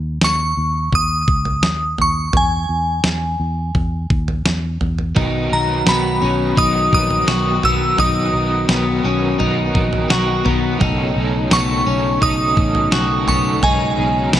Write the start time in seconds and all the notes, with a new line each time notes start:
Already playing: D#2
0.21 D#2 C#6, snare
0.57 D#2
0.93 D#2 D#6, kick, floor tom
1.28 C#2, kick
1.45 floor tom
1.63 D#2, snare
1.98 D#2 C#6, floor tom
2.33 E2 G#5, floor tom
2.69 E2
3.04 E2, snare
3.40 E2
3.75 E2, kick, floor tom
4.10 D#2, kick
4.28 floor tom
4.46 E2, snare
4.81 E2, floor tom
4.98 floor tom
5.15 B1 B2 D#3 F#3 B3 D#4 F#4, kick, floor tom
5.19 A#4
5.49 B1 D#4 A#4 A#5
5.54 F#3 B3
5.85 B1 B2 D#3 F#3 B3 D#4 B5, snare
6.22 B1 B3 C#4 D#4
6.26 F#3
6.56 B1 F#3 B3 D#6, kick, floor tom
6.60 D#4 A#4
6.91 A#1 D#4 A#4 D#6, kick
6.95 F#3 B3
7.10 floor tom
7.27 B1 B2 D#3 F#3 B3 D#4 F#4, snare
7.31 A#4
7.62 B1 D#4 A#4 E6, floor tom
7.66 F#3 B3
7.97 B1 B2 D#3 F#3 B3 D#4 D#6, floor tom
8.01 A#4
8.32 B1 D#4 A#4
8.36 F#3 B3
8.68 B1 B2 D#3 F#3 B3 D#4, snare
8.72 A#4
9.02 B1 C#4 D#4 A#4
9.07 F#3 B3
9.38 B1 F#3 B3, floor tom
9.42 D#4 A#4
9.73 A#1 D#4 A#4, kick
9.78 F#3 B3
9.93 floor tom
10.09 B1 B2 D#3 F#3 B3 D#4 F#4, snare
10.13 A#4
10.44 B1 D#4 A#4, floor tom
10.48 F#3 B3
10.79 B1 B2 C#3 D#3 F#3 A3 C#4 D#4, kick, floor tom
10.84 A4
11.14 B1 D#4 A4
11.18 F#3 C#4
11.50 B1 B2 D#3 F#3 B3 C#4 D#4 C#6, snare
11.54 A4
11.85 B1 C#4 D#4 A4
11.90 F#3
12.20 B1 F#3 C#4 D#6, kick, floor tom
12.24 D#4 A4
12.55 A1 D#4 A4, kick
12.59 F#3 C#4
12.75 floor tom
12.90 B1 B2 D#3 F#3 C#4 D#4 F#4, snare
12.94 A4
13.26 B1 B3 D#4 A4 C#6, floor tom
13.30 F#3 C#4
13.61 B1 B2 C#3 D#3 F#3 G#3 C#4 D#4 G#4 G#5, floor tom
13.97 B1 D#4 G#4
14.01 F#3 C#4
14.32 B1 B2 D#3 F#3 B3 C#4 D#4, snare
14.37 G#4